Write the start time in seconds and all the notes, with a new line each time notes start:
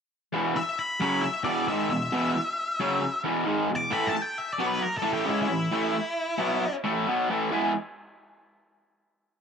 0.33 E2 B2 E3
0.55 E5, muted overdriven electric guitar stroke
0.79 B5
1.00 F#2 C#3 F#3 B5
1.21 E5, muted overdriven electric guitar stroke
1.44 E2 B2 E3 D5
1.68 G#2 D#3 G#3 E5
1.90 E2 B2 E5
2.12 E2 B2 E3
2.36 muted overdriven electric guitar stroke
2.80 F#2 C#3 F#3
3.03 muted overdriven electric guitar stroke
3.24 E2 B2 E3
3.46 G#2 D#3 G#3
3.70 E2 B2
3.76 D6
3.91 A2 E3 A3 B5
4.06 A5
4.14 muted overdriven electric guitar stroke
4.22 G5
4.38 E5
4.53 D5
4.59 B2 F#3 B3
4.66 B4
4.81 A#4, muted overdriven electric guitar stroke
4.98 A4
5.02 A2 E3 A3
5.13 G4
5.25 C#3 G#3 C#4 E4
5.42 E4
5.49 A2 E3
5.72 A2 E3 A3
5.94 muted overdriven electric guitar stroke
6.38 B2 F#3 B3
6.61 muted overdriven electric guitar stroke
6.84 A2 E3 A3
7.07 B2 F#3 B3
7.30 A2 E3 A3
7.52 E3 G#3 B3 E4 G#4